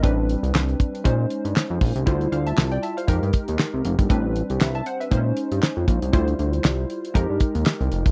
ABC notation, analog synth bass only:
X:1
M:4/4
L:1/16
Q:"Swing 16ths" 1/4=118
K:Aphr
V:1 name="Analog synth bass" clef=bass
A,,,3 C,, C,,2 z2 B,,2 z G,, z F,, B,,, C,, | D,,2 D,,2 C,,2 z2 F,, G,, z _E,, z C,, F,,, G,,, | A,,,3 C,, C,,2 z2 B,,2 z G,, z F,, B,,, C,, | D,,2 D,,2 C,,2 z2 F,, G,, z _E,, z C,, F,,, G,,, |]